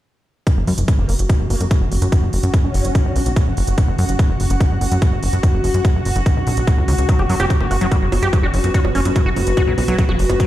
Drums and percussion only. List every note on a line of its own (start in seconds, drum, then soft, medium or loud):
0.47 kick loud
0.47 closed hi-hat medium
0.67 open hi-hat loud
0.78 closed hi-hat medium
0.88 kick loud
0.88 closed hi-hat medium
1.09 open hi-hat loud
1.19 closed hi-hat medium
1.29 kick loud
1.29 closed hi-hat medium
1.50 open hi-hat loud
1.61 closed hi-hat medium
1.71 kick loud
1.71 closed hi-hat medium
1.92 open hi-hat loud
2.02 closed hi-hat medium
2.12 kick loud
2.12 closed hi-hat medium
2.33 open hi-hat loud
2.43 closed hi-hat medium
2.54 kick loud
2.54 closed hi-hat medium
2.74 open hi-hat loud
2.85 closed hi-hat medium
2.95 kick loud
2.95 closed hi-hat medium
3.16 open hi-hat loud
3.26 closed hi-hat medium
3.36 kick loud
3.36 closed hi-hat medium
3.57 open hi-hat loud
3.67 closed hi-hat medium
3.78 kick loud
3.78 closed hi-hat medium
3.98 open hi-hat loud
4.09 closed hi-hat medium
4.19 kick loud
4.19 closed hi-hat medium
4.40 open hi-hat loud
4.50 closed hi-hat medium
4.61 kick loud
4.61 closed hi-hat medium
4.81 open hi-hat loud
4.92 closed hi-hat medium
5.02 kick loud
5.02 closed hi-hat medium
5.23 open hi-hat loud
5.33 closed hi-hat medium
5.43 kick loud
5.43 closed hi-hat medium
5.64 open hi-hat loud
5.74 closed hi-hat medium
5.85 kick loud
5.85 closed hi-hat medium
6.05 open hi-hat loud
6.16 closed hi-hat medium
6.26 kick loud
6.26 closed hi-hat medium
6.47 open hi-hat loud
6.57 closed hi-hat medium
6.67 kick loud
6.67 closed hi-hat medium
6.88 open hi-hat loud
6.98 closed hi-hat medium
7.09 kick loud
7.09 closed hi-hat medium
7.19 high bongo soft
7.29 open hi-hat loud
7.40 closed hi-hat medium
7.40 high bongo medium
7.50 kick loud
7.50 closed hi-hat medium
7.61 high bongo soft
7.71 open hi-hat loud
7.81 closed hi-hat medium
7.92 kick loud
7.92 closed hi-hat medium
7.92 high bongo soft
8.12 open hi-hat loud
8.12 high bongo medium
8.23 closed hi-hat medium
8.33 kick loud
8.33 closed hi-hat medium
8.33 high bongo soft
8.54 open hi-hat loud
8.64 closed hi-hat medium
8.64 high bongo soft
8.74 kick loud
8.74 closed hi-hat medium
8.85 high bongo medium
8.95 open hi-hat loud
9.05 closed hi-hat medium
9.05 high bongo soft
9.16 kick loud
9.16 closed hi-hat medium
9.36 open hi-hat loud
9.36 high bongo soft
9.47 closed hi-hat medium
9.57 kick loud
9.57 closed hi-hat medium
9.57 high bongo medium
9.78 open hi-hat loud
9.78 high bongo soft
9.88 closed hi-hat medium
9.98 kick loud
9.98 closed hi-hat medium
10.09 high bongo soft
10.19 open hi-hat loud
10.30 closed hi-hat medium
10.30 high bongo medium
10.40 kick loud
10.40 closed hi-hat medium